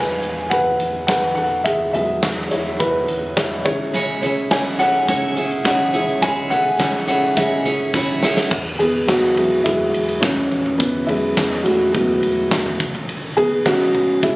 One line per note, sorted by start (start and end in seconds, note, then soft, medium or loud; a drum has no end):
0.00 0.17 E2 medium
0.00 1.94 E3 soft
0.00 1.95 F#3 soft
0.00 1.95 G#3 medium
0.00 2.53 E4 medium
0.00 0.52 B4 medium
0.00 0.52 G#5 medium
0.23 0.46 E2 medium
0.23 closed hi-hat medium
0.50 0.75 E2 medium
0.50 1.05 B4 medium
0.50 1.06 F#5 medium
0.50 kick loud
0.50 closed hi-hat medium
0.80 1.03 E2 medium
0.80 closed hi-hat medium
1.07 1.32 E2 medium
1.07 1.35 B4 medium
1.07 1.34 F#5 medium
1.07 kick loud
1.07 snare loud
1.07 clap medium
1.07 closed hi-hat medium
1.35 1.61 E2 medium
1.35 1.64 A4 medium
1.35 1.66 F#5 medium
1.35 closed hi-hat medium
1.64 1.89 E2 medium
1.64 1.73 G#4 medium
1.64 1.71 E5 medium
1.64 kick loud
1.64 closed hi-hat medium
1.93 2.18 E2 medium
1.93 2.76 E3 medium
1.93 2.76 F#3 soft
1.93 2.77 G#3 medium
1.93 2.48 G#4 medium
1.93 2.53 E5 medium
1.93 closed hi-hat medium
1.93 floor tom medium
2.23 2.46 E2 medium
2.23 kick medium
2.23 snare loud
2.23 clap medium
2.23 closed hi-hat medium
2.51 2.75 E2 medium
2.51 2.79 E4 medium
2.51 2.78 C#5 medium
2.51 closed hi-hat medium
2.79 3.04 E2 medium
2.79 3.34 E4 medium
2.79 3.39 B4 medium
2.79 kick loud
2.79 closed hi-hat medium
3.08 3.32 E2 medium
3.08 closed hi-hat medium
3.37 3.61 E2 medium
3.37 3.45 E4 medium
3.37 3.43 C#5 medium
3.37 kick loud
3.37 snare loud
3.37 clap medium
3.37 closed hi-hat medium
3.65 4.13 C#2 loud
3.65 4.47 C#3 soft
3.65 4.48 E3 soft
3.65 4.48 G#3 medium
3.65 4.48 E4 medium
3.65 4.51 C#5 loud
3.65 kick loud
3.65 closed hi-hat medium
3.93 4.22 C#3 medium
3.93 4.23 G#3 medium
3.93 4.23 C#4 medium
3.93 4.23 E4 medium
3.93 4.22 G#4 medium
3.93 4.21 C#5 medium
3.93 closed hi-hat medium
4.22 4.46 C#2 medium
4.22 4.49 C#4 medium
4.22 4.50 E4 soft
4.22 4.51 G#4 soft
4.22 4.51 C#5 medium
4.22 closed hi-hat medium
4.22 floor tom medium
4.51 4.75 C#2 medium
4.51 4.80 C#4 medium
4.51 4.79 E4 medium
4.51 4.79 G#4 medium
4.51 4.79 C#5 medium
4.51 4.78 C#5 medium
4.51 4.80 G#5 medium
4.51 kick medium
4.51 snare loud
4.51 clap medium
4.51 closed hi-hat medium
4.79 5.03 C#2 medium
4.79 5.07 C#4 soft
4.79 5.08 E4 soft
4.79 5.08 G#4 medium
4.79 5.62 A4 medium
4.79 5.08 C#5 medium
4.79 5.64 F#5 loud
4.79 closed hi-hat medium
5.08 5.32 C#2 loud
5.08 5.37 C#3 medium
5.08 5.37 G#3 medium
5.08 5.37 C#4 medium
5.08 5.37 E4 medium
5.08 5.36 G#4 medium
5.08 5.35 C#5 medium
5.08 kick loud
5.08 closed hi-hat medium
5.36 5.60 C#2 medium
5.36 5.63 C#4 medium
5.36 5.64 E4 medium
5.36 5.65 G#4 medium
5.36 5.65 C#5 medium
5.36 closed hi-hat medium
5.51 closed hi-hat medium
5.64 5.89 C#2 loud
5.64 5.94 C#4 medium
5.64 5.94 E4 medium
5.64 5.93 G#4 medium
5.64 6.20 C#5 medium
5.64 5.92 C#5 medium
5.64 6.24 F#5 medium
5.64 kick loud
5.64 snare loud
5.64 clap medium
5.64 closed hi-hat medium
5.93 6.17 C#2 loud
5.93 6.76 C#3 medium
5.93 6.76 E3 soft
5.93 6.76 G#3 medium
5.93 6.22 C#4 soft
5.93 6.22 E4 soft
5.93 6.22 G#4 soft
5.93 6.22 C#5 medium
5.93 closed hi-hat medium
6.09 closed hi-hat soft
6.22 6.46 C#2 medium
6.22 6.51 C#3 medium
6.22 6.51 G#3 medium
6.22 6.51 C#4 medium
6.22 6.51 E4 medium
6.22 6.50 G#4 medium
6.22 6.50 C#5 medium
6.22 6.49 C#5 medium
6.22 6.52 G#5 loud
6.22 kick loud
6.22 closed hi-hat medium
6.50 6.75 C#2 medium
6.50 6.78 C#4 soft
6.50 6.79 E4 soft
6.50 6.80 G#4 medium
6.50 7.05 A4 medium
6.50 6.79 C#5 medium
6.50 7.07 F#5 loud
6.50 closed hi-hat medium
6.50 floor tom medium
6.79 7.03 C#2 loud
6.79 7.05 C#3 soft
6.79 7.06 E3 soft
6.79 7.06 G#3 medium
6.79 7.08 C#4 medium
6.79 7.08 E4 medium
6.79 7.07 G#4 medium
6.79 7.06 C#5 medium
6.79 kick medium
6.79 snare loud
6.79 clap medium
6.79 closed hi-hat medium
7.07 7.31 C#2 loud
7.07 7.37 C#4 soft
7.07 7.37 E4 soft
7.07 7.37 G#4 soft
7.07 7.36 A4 medium
7.07 7.36 C#5 medium
7.07 7.38 F#5 medium
7.07 closed hi-hat medium
7.37 7.60 C#2 loud
7.37 7.66 C#3 medium
7.37 7.66 G#3 medium
7.37 7.66 C#4 medium
7.37 7.66 E4 medium
7.37 8.19 G#4 medium
7.37 7.65 G#4 loud
7.37 7.64 C#5 medium
7.37 8.19 E5 medium
7.37 kick loud
7.37 closed hi-hat medium
7.65 7.88 C#2 medium
7.65 7.93 C#4 medium
7.65 7.94 E4 medium
7.65 7.95 G#4 medium
7.65 7.94 C#5 medium
7.65 closed hi-hat medium
7.94 8.18 C#2 loud
7.94 8.23 C#4 medium
7.94 8.23 E4 medium
7.94 8.23 G#4 medium
7.94 8.21 C#5 medium
7.94 kick loud
7.94 snare medium
8.22 8.46 C#2 loud
8.22 8.53 C#4 medium
8.22 8.52 E4 soft
8.22 8.52 G#4 medium
8.22 8.51 C#5 medium
8.22 snare medium
8.37 snare medium
8.51 8.75 E2 loud
8.51 kick loud
8.51 crash medium
8.79 9.03 E2 medium
8.79 9.07 B3 medium
8.79 9.09 G#4 medium
8.79 floor tom medium
8.79 ride medium
9.07 9.32 E2 loud
9.07 9.62 B3 medium
9.07 9.67 F#4 loud
9.07 kick medium
9.07 snare loud
9.07 clap medium
9.07 ride medium
9.37 9.60 E2 loud
9.37 11.07 F#3 medium
9.37 9.65 G#3 medium
9.37 9.62 E4 medium
9.37 floor tom medium
9.37 ride medium
9.64 9.89 E2 loud
9.64 10.19 G#3 medium
9.64 10.18 E4 medium
9.64 kick loud
9.64 ride medium
9.94 10.18 E2 medium
9.94 ride medium
10.09 ride soft
10.20 10.46 E2 loud
10.20 10.76 E3 medium
10.20 10.81 C#4 medium
10.20 kick loud
10.20 snare loud
10.20 clap medium
10.20 ride medium
10.37 floor tom medium
10.51 10.75 E2 loud
10.51 ride soft
10.66 floor tom medium
10.78 11.03 E2 loud
10.78 11.07 E3 medium
10.78 11.06 B3 medium
10.78 kick loud
10.78 ride medium
11.07 11.32 E2 medium
11.07 11.47 F#3 medium
11.07 11.62 G#3 medium
11.07 11.08 E4 loud
11.07 11.47 E4 medium
11.07 floor tom medium
11.07 ride medium
11.37 11.61 E2 loud
11.37 kick loud
11.37 snare loud
11.37 clap medium
11.37 ride medium
11.64 11.89 E2 medium
11.64 11.73 A3 medium
11.64 11.70 F#4 medium
11.64 floor tom medium
11.64 ride medium
11.93 12.18 E2 loud
11.93 12.20 F#3 medium
11.93 12.20 G#3 soft
11.93 12.77 B3 medium
11.93 12.21 E4 medium
11.93 12.75 F#4 medium
11.93 kick loud
11.93 ride medium
12.23 12.46 E2 loud
12.23 ride medium
12.51 12.75 E2 medium
12.51 kick loud
12.51 snare loud
12.51 clap medium
12.51 ride medium
12.66 floor tom medium
12.80 13.27 C#2 loud
12.80 kick loud
12.80 ride medium
12.95 floor tom medium
12.95 ride soft
13.09 ride medium
13.37 13.61 C#2 medium
13.37 13.64 B3 medium
13.37 13.66 G#4 loud
13.37 floor tom medium
13.37 ride medium
13.65 13.89 C#2 loud
13.65 14.36 E3 medium
13.65 14.22 G#3 medium
13.65 14.20 C#4 medium
13.65 14.24 F#4 loud
13.65 kick loud
13.65 snare loud
13.65 clap medium
13.65 ride medium
13.94 14.18 C#2 loud
13.94 floor tom medium
13.94 ride medium
14.23 14.36 C#2 loud
14.23 14.36 G#3 medium
14.23 14.36 E4 loud
14.23 kick loud
14.23 ride medium